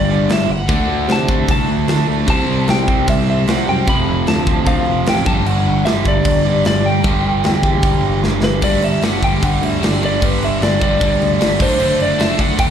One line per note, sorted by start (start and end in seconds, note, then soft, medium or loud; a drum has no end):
0.00 0.26 G1 loud
0.00 0.48 G2 medium
0.00 0.48 D3 loud
0.00 0.49 G3 loud
0.00 0.32 D5 loud
0.10 0.50 G2 medium
0.10 0.49 D3 medium
0.10 0.48 G3 medium
0.29 0.47 G1 loud
0.29 snare loud
0.29 crash medium
0.33 0.51 E5 loud
0.49 0.67 G1 medium
0.49 1.12 F#5 loud
0.68 0.87 D2 loud
0.68 1.27 D3 loud
0.68 1.28 A3 loud
0.68 1.27 D4 loud
0.68 kick loud
0.68 crash medium
0.88 1.07 D2 loud
1.08 1.45 C3 loud
1.08 snare loud
1.08 crash medium
1.12 1.50 A5 medium
1.28 1.86 D3 medium
1.28 1.88 A3 medium
1.28 1.87 D4 medium
1.28 kick medium
1.48 1.67 C2 loud
1.48 2.05 A5 loud
1.48 kick loud
1.48 crash medium
1.68 1.87 D2 medium
1.88 2.07 D2 medium
1.88 2.26 D3 loud
1.88 2.27 A3 medium
1.88 2.28 D4 loud
1.88 snare loud
1.88 crash medium
2.07 2.26 D2 medium
2.27 2.46 C2 loud
2.27 2.86 C3 medium
2.27 2.87 G3 loud
2.27 2.88 C4 loud
2.27 2.70 A5 loud
2.27 kick loud
2.27 crash medium
2.48 2.66 C2 loud
2.68 2.86 C2 medium
2.68 3.09 G5 loud
2.68 snare loud
2.68 crash medium
2.88 3.06 C2 medium
2.88 3.46 C3 medium
2.88 3.47 G3 medium
2.88 3.46 C4 medium
2.88 kick medium
3.08 3.44 C2 loud
3.08 3.29 E5 loud
3.08 kick loud
3.08 crash medium
3.30 3.51 E5 loud
3.47 3.66 C2 medium
3.47 3.86 C3 medium
3.47 3.86 G3 medium
3.47 3.87 C4 loud
3.47 snare loud
3.47 crash medium
3.51 3.69 F#5 loud
3.68 3.86 F#2 medium
3.68 3.87 G5 loud
3.87 4.06 F1 loud
3.87 4.46 F2 loud
3.87 4.46 C3 medium
3.87 4.46 F3 loud
3.87 4.25 B5 loud
3.87 kick loud
3.87 crash medium
4.08 4.26 F1 loud
4.27 4.64 D2 loud
4.27 4.68 A5 loud
4.27 snare loud
4.27 crash medium
4.47 5.05 F2 medium
4.47 5.06 C3 medium
4.47 5.05 F3 medium
4.47 kick medium
4.66 4.85 D2 loud
4.66 5.08 F5 loud
4.66 kick loud
4.66 crash medium
4.87 5.05 F1 medium
5.06 5.25 A1 loud
5.06 5.24 F2 medium
5.06 5.26 C3 loud
5.06 5.27 F3 loud
5.06 5.26 G5 loud
5.06 snare loud
5.06 crash medium
5.25 5.44 G1 medium
5.25 5.85 G2 loud
5.25 5.85 D3 loud
5.25 5.88 G3 loud
5.25 5.46 A5 loud
5.25 kick loud
5.46 5.65 G1 loud
5.46 5.87 F#5 loud
5.46 crash medium
5.67 5.85 G1 loud
5.85 6.04 G1 loud
5.85 6.47 G2 medium
5.85 6.45 D3 medium
5.85 6.44 G3 medium
5.85 6.04 E5 medium
5.85 snare loud
5.85 crash medium
6.05 6.24 G1 loud
6.05 6.65 D5 loud
6.05 kick medium
6.25 6.62 G1 loud
6.25 kick loud
6.25 crash medium
6.45 7.03 G2 medium
6.45 6.84 D3 medium
6.45 7.07 G3 loud
6.65 6.84 G1 loud
6.65 6.86 D5 loud
6.65 snare loud
6.65 crash medium
6.85 7.03 G1 medium
6.85 8.20 G5 medium
7.04 7.23 G1 loud
7.04 7.63 G2 loud
7.04 7.64 D3 loud
7.04 7.62 G3 loud
7.04 kick loud
7.04 crash medium
7.25 7.43 G1 medium
7.44 7.81 E2 loud
7.44 snare loud
7.44 crash medium
7.63 8.22 G2 medium
7.63 8.23 D3 medium
7.63 8.22 G3 medium
7.63 kick medium
7.83 8.02 E1 loud
7.83 kick loud
7.83 crash medium
8.02 8.21 G1 medium
8.22 8.41 G1 loud
8.22 8.62 G2 medium
8.22 8.63 D3 medium
8.22 snare medium
8.27 8.64 G3 medium
8.42 8.61 G1 medium
8.42 8.63 B4 medium
8.42 snare loud
8.62 8.78 G1 loud
8.62 9.02 G2 medium
8.62 9.02 D3 loud
8.62 9.04 G3 loud
8.62 8.84 D5 loud
8.62 kick loud
8.62 crash medium
8.81 8.97 G1 medium
8.81 9.04 E5 loud
8.81 crash medium
9.02 9.17 G1 medium
9.02 9.23 G2 medium
9.02 9.23 D3 medium
9.02 9.24 G3 medium
9.02 9.24 F#5 loud
9.02 snare loud
9.02 crash medium
9.22 9.38 G1 loud
9.22 9.42 G2 medium
9.22 9.42 D3 loud
9.22 9.43 G3 medium
9.22 9.44 G5 medium
9.22 kick medium
9.22 crash medium
9.43 9.58 G1 loud
9.43 9.81 G2 loud
9.43 9.82 D3 loud
9.43 9.82 G3 loud
9.43 9.64 F#5 loud
9.43 kick loud
9.43 crash loud
9.61 9.77 D2 medium
9.61 9.84 E5 loud
9.61 crash medium
9.81 9.97 G1 medium
9.81 10.01 G2 medium
9.81 10.02 D3 medium
9.81 10.02 G3 loud
9.81 10.03 D5 loud
9.81 snare loud
9.81 crash medium
10.01 10.17 G1 medium
10.01 10.21 G2 loud
10.01 10.22 D3 medium
10.01 10.22 G3 loud
10.01 crash medium
10.05 10.25 D5 loud
10.22 10.37 G1 medium
10.22 10.60 G2 medium
10.22 10.61 D3 loud
10.22 10.62 G3 loud
10.22 10.44 B4 loud
10.22 kick loud
10.22 crash medium
10.42 10.57 G1 loud
10.42 10.63 E5 medium
10.42 crash medium
10.61 10.76 G1 loud
10.61 10.79 G2 medium
10.61 10.80 D3 medium
10.61 10.80 G3 medium
10.61 10.82 D5 medium
10.61 snare loud
10.61 crash medium
10.81 10.96 G1 medium
10.81 10.99 G2 medium
10.81 11.00 D3 medium
10.81 11.00 G3 loud
10.81 11.62 D5 loud
10.81 kick loud
10.81 crash medium
11.00 11.16 G1 loud
11.00 11.38 G2 loud
11.00 11.39 D3 loud
11.00 11.40 G3 loud
11.00 kick loud
11.00 crash medium
11.22 11.36 D2 loud
11.22 crash medium
11.39 11.56 G1 loud
11.39 11.58 G2 loud
11.39 11.58 D3 medium
11.39 11.59 G3 loud
11.39 snare loud
11.39 crash loud
11.59 11.75 F#1 medium
11.59 11.78 D3 loud
11.59 11.79 A3 loud
11.59 11.79 D4 loud
11.59 12.02 C5 medium
11.59 kick loud
11.59 crash loud
11.79 11.95 F#1 loud
11.79 12.17 D3 loud
11.79 12.18 A3 loud
11.79 12.18 D4 loud
11.79 crash medium
12.00 12.15 F#1 medium
12.00 12.21 D5 medium
12.00 crash medium
12.18 12.34 F#1 loud
12.18 12.37 D3 medium
12.18 12.38 A3 medium
12.18 12.38 D4 loud
12.18 12.41 E5 loud
12.18 snare loud
12.18 crash medium
12.38 12.54 F#1 medium
12.38 12.56 D3 medium
12.38 12.57 A3 loud
12.38 12.58 D4 loud
12.38 12.59 F#5 loud
12.38 kick medium
12.38 crash medium
12.58 12.70 F#1 loud
12.58 12.70 D3 loud
12.58 12.70 A3 loud
12.58 12.70 D4 loud
12.58 12.65 G5 loud
12.58 kick loud
12.58 crash loud